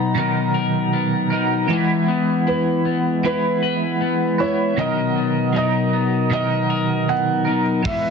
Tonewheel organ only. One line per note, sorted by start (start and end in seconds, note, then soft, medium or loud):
0.00 1.67 F#3 medium
0.00 1.67 B3 medium
0.00 1.67 D#4 medium
0.00 1.67 A#5 medium
1.70 4.74 G#3 medium
1.70 8.10 B3 medium
1.70 4.74 E4 medium
1.70 4.74 B4 medium
4.77 7.82 F#3 medium
4.77 7.82 D#4 medium
4.77 7.82 A#4 medium
7.86 8.10 G#3 medium
7.86 8.10 E4 medium
7.86 8.10 B4 medium